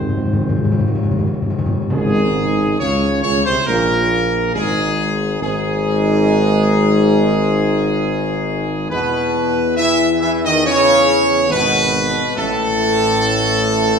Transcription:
Already playing: tuba G#1, trombone section D#3 G#3, french horn section C4, trumpet section C5
0.01 timpani G#2
0.09 timpani G#2
0.17 timpani G#2
0.25 timpani G#2
0.33 timpani G#2
0.41 timpani G#2
0.49 timpani G#2
0.56 timpani G#2
0.64 timpani G#2
0.72 timpani G#2
0.79 timpani G#2
0.88 timpani G#2
0.95 timpani G#2
1.03 timpani G#2
1.11 timpani G#2
1.19 timpani G#2
1.27 timpani G#2
1.34 timpani G#2
1.42 timpani G#2
1.50 timpani G#2
1.59 timpani G#2
1.66 timpani G#2
1.74 timpani G#2
1.82 timpani G#2
1.90 tuba G#1, trombone section G#2, timpani C#3, french horn section G#3, trumpet section G#4
2.79 tuba C#2, trombone section C#3, french horn section C#4, trumpet section C#5
3.23 tuba C#2, trombone section C#3, french horn section C#4, trumpet section C#5
3.45 tuba C2, trombone section C3, french horn section C4, trumpet section C5
3.66 tuba A#1, trombone section A#2, french horn section A#3, trumpet section A#4
4.54 tuba G#1, trombone section G#2, french horn section G#3, trumpet section G#4
5.42 tuba G#1, trombone section G#2, french horn section G#3, trumpet section G#4
8.90 tuba E2, trombone section B2, french horn section B3, trumpet section B4
9.76 trombone section E3, french horn section E4, trumpet section E5
10.21 trombone section E3, french horn section E4, trumpet section E5
10.44 trombone section D#3, french horn section D#4, trumpet section D#5
10.64 trombone section C#3, french horn section C#4, trumpet section C#5
11.50 tuba G#1, trombone section B2, french horn section B3, trumpet section B4
12.36 tuba A1, trombone section A2, french horn section A3, trumpet section A4

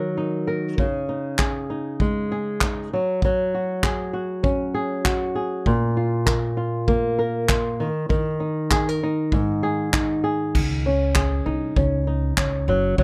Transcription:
Already playing: nylon-string guitar D#3 F#3 D#4 A#4
0.17 nylon-string guitar D#4
0.47 nylon-string guitar A#4
0.78 nylon-string guitar C#3, kick
1.09 nylon-string guitar D#4
1.39 nylon-string guitar G#4, kick, clap
1.70 nylon-string guitar D#4
2.00 nylon-string guitar G#3, kick
2.32 nylon-string guitar G#4
2.61 nylon-string guitar D#4, kick, clap
2.93 nylon-string guitar F#3
3.22 nylon-string guitar F#3, kick
3.54 nylon-string guitar F#4
3.83 nylon-string guitar G#4, kick, clap
4.13 nylon-string guitar F#4
4.43 nylon-string guitar C#4, kick
4.74 nylon-string guitar G#4
5.05 nylon-string guitar F#4, kick, clap
5.35 nylon-string guitar G#4
5.66 nylon-string guitar A#2, kick
5.97 nylon-string guitar F4
6.26 nylon-string guitar A#4, kick, clap
6.57 nylon-string guitar F4
6.88 nylon-string guitar A#3, kick
7.19 nylon-string guitar A#4
7.49 nylon-string guitar F4, kick, clap
7.80 nylon-string guitar D#3
8.09 nylon-string guitar D#3, kick
8.40 nylon-string guitar D#4
8.71 nylon-string guitar G#4, kick, clap
8.89 nylon-string guitar A#4
9.03 nylon-string guitar D#4
9.32 nylon-string guitar G#2, kick
9.63 nylon-string guitar G#4
9.93 nylon-string guitar D#4, kick, clap
10.24 nylon-string guitar G#4
10.55 upright bass C#2, kick, crash
10.86 nylon-string guitar C#4
11.15 nylon-string guitar G#4, kick, clap
11.46 upright bass C2, nylon-string guitar D#4
11.76 upright bass C#2, nylon-string guitar C#4, kick
12.07 nylon-string guitar D#4
12.37 upright bass C#2, nylon-string guitar C#4, kick, clap
12.68 upright bass F#1, nylon-string guitar F#3
12.98 upright bass F#1, nylon-string guitar F#3, kick

